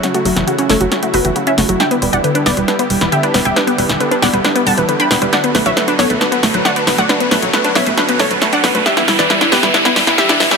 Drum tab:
HH |xxoxxxoxxxoxxxox|xxoxxxoxxxoxxxox|xxoxxxoxxxoxxxox|xxoxxxoxxxoxxxox|
SD |o--o--o-o-----o-|o-----o-o--o--o-|o--o--o-o-----o-|o-o-o-o-o-o-o-o-|

HH |xxoxxxoxxxoxxxox|xxoxxxoxxxoxxxox|
SD |o-o-o-o-o-o-o-o-|oooooooooooooooo|